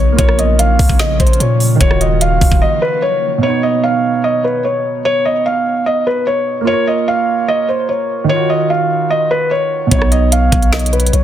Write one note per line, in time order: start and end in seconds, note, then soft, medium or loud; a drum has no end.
0.00 0.17 B1 loud
0.00 0.12 B2 medium
0.00 0.15 C#3 medium
0.00 0.14 F#3 medium
0.00 0.14 B3 medium
0.00 0.15 B3 medium
0.00 0.15 D#4 medium
0.00 0.16 D#4 medium
0.00 0.16 C#5 medium
0.00 0.18 C#5 medium
0.12 1.74 A#3 medium
0.12 1.76 F4 medium
0.18 0.77 A#1 loud
0.18 1.79 C#3 medium
0.18 1.79 F3 medium
0.18 1.79 A#3 medium
0.18 1.79 C#4 loud
0.18 1.78 A#4 medium
0.18 0.37 C#5 loud
0.18 kick loud
0.18 closed hi-hat medium
0.24 1.80 C#5 medium
0.29 cross-stick medium
0.39 0.57 D#5 medium
0.39 closed hi-hat medium
0.59 0.97 F5 medium
0.59 closed hi-hat medium
0.79 0.89 C#2 loud
0.79 kick medium
0.79 open hi-hat medium
0.89 1.19 A#1 loud
0.89 kick medium
0.99 1.18 D#5 medium
0.99 snare loud
0.99 closed hi-hat medium
1.20 1.39 A#1 loud
1.20 1.38 C5 medium
1.20 kick medium
1.20 closed hi-hat medium
1.27 closed hi-hat medium
1.33 closed hi-hat medium
1.40 1.79 A#2 loud
1.40 1.78 C#5 medium
1.40 closed hi-hat medium
1.60 open hi-hat medium
1.75 3.37 D#3 medium
1.79 2.39 D#1 loud
1.79 3.41 D#3 medium
1.79 3.41 F#3 medium
1.79 3.41 A#3 medium
1.79 3.39 D#4 medium
1.79 1.99 C#5 loud
1.79 3.41 F5 loud
1.79 kick loud
1.79 closed hi-hat medium
1.83 3.41 F4 medium
1.88 3.43 F#4 medium
1.88 cross-stick medium
2.01 2.19 D#5 medium
2.01 closed hi-hat medium
2.21 2.59 F5 medium
2.21 closed hi-hat medium
2.41 2.51 D#1 loud
2.41 kick medium
2.41 open hi-hat medium
2.52 2.61 D#1 loud
2.52 kick medium
2.62 2.80 D#5 medium
2.82 3.00 B4 medium
3.02 3.40 C#5 medium
3.38 6.61 B2 medium
3.42 6.63 B3 medium
3.42 3.61 C#5 loud
3.46 6.65 D#4 medium
3.46 6.67 C#5 medium
3.63 3.82 D#5 medium
3.83 4.22 F5 medium
4.24 4.42 D#5 medium
4.44 4.63 B4 medium
4.65 5.03 C#5 medium
5.05 5.24 C#5 loud
5.25 5.44 D#5 medium
5.46 5.84 F5 medium
5.86 6.05 D#5 medium
6.07 6.25 B4 medium
6.27 6.65 C#5 medium
6.61 8.23 A#3 medium
6.65 8.25 F4 medium
6.65 6.86 C#5 loud
6.69 8.27 A#4 medium
6.73 8.29 C#5 medium
6.87 7.06 D#5 medium
7.08 7.46 F5 medium
7.48 7.67 D#5 medium
7.69 7.87 C5 medium
7.89 8.27 C#5 medium
8.24 9.86 D#3 medium
8.28 9.88 D#4 medium
8.28 9.90 F4 medium
8.28 8.48 C#5 loud
8.36 9.92 F#4 medium
8.50 8.68 D#5 medium
8.70 9.08 F5 medium
9.10 9.29 D#5 medium
9.31 9.49 B4 medium
9.51 9.89 C#5 medium
9.87 11.24 B2 medium
9.87 11.24 B3 medium
9.91 10.50 B1 loud
9.91 11.24 C#3 medium
9.91 11.24 F#3 medium
9.91 11.24 B3 medium
9.91 11.24 D#4 medium
9.91 10.10 C#5 loud
9.91 kick loud
9.91 closed hi-hat medium
9.99 11.24 C#5 medium
9.99 cross-stick medium
10.12 10.30 D#5 medium
10.12 closed hi-hat medium
10.32 10.70 F5 medium
10.32 closed hi-hat medium
10.52 11.11 B1 loud
10.52 kick medium
10.52 closed hi-hat medium
10.62 closed hi-hat soft
10.72 10.91 D#5 medium
10.72 snare loud
10.72 closed hi-hat soft
10.79 closed hi-hat medium
10.86 closed hi-hat medium
10.93 11.11 B4 medium
10.93 closed hi-hat soft
11.00 closed hi-hat medium
11.06 closed hi-hat medium
11.13 11.23 B1 loud
11.13 11.24 C#5 medium
11.13 closed hi-hat medium